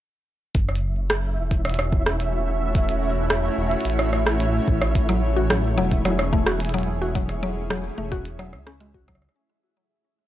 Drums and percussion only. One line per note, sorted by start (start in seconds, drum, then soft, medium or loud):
0.55 kick loud
0.55 closed hi-hat medium
0.69 cross-stick soft
0.75 closed hi-hat medium
1.10 cross-stick loud
1.10 closed hi-hat medium
1.51 kick medium
1.51 closed hi-hat medium
1.65 cross-stick medium
1.65 closed hi-hat soft
1.70 closed hi-hat soft
1.74 closed hi-hat medium
1.79 cross-stick medium
1.92 kick loud
2.06 cross-stick loud
2.20 closed hi-hat medium
2.75 kick loud
2.75 closed hi-hat medium
2.89 closed hi-hat medium
3.30 cross-stick loud
3.30 closed hi-hat medium
3.71 closed hi-hat soft
3.81 closed hi-hat soft
3.85 closed hi-hat medium
3.90 closed hi-hat soft
3.99 cross-stick medium
4.13 cross-stick medium
4.26 cross-stick loud
4.40 closed hi-hat medium
4.68 kick loud
4.82 cross-stick medium
4.95 kick loud
4.95 closed hi-hat medium
5.09 cross-stick soft
5.09 closed hi-hat medium
5.50 cross-stick loud
5.50 closed hi-hat medium
5.91 kick medium
5.91 closed hi-hat medium
6.05 cross-stick medium
6.05 closed hi-hat medium
6.19 cross-stick medium
6.33 kick loud
6.46 cross-stick loud
6.60 closed hi-hat medium
6.65 closed hi-hat medium
6.69 closed hi-hat medium
6.74 closed hi-hat soft
6.79 closed hi-hat soft
6.83 closed hi-hat soft
7.15 kick loud
7.15 closed hi-hat medium
7.29 cross-stick soft
7.29 closed hi-hat soft
7.70 cross-stick loud
7.70 closed hi-hat medium
8.12 kick medium
8.12 closed hi-hat soft
8.25 closed hi-hat medium
8.39 cross-stick medium
8.53 cross-stick medium
8.67 cross-stick loud
8.80 closed hi-hat medium
8.94 kick medium
9.08 kick loud
9.08 cross-stick medium
9.15 cross-stick medium
9.22 cross-stick soft
9.29 cross-stick soft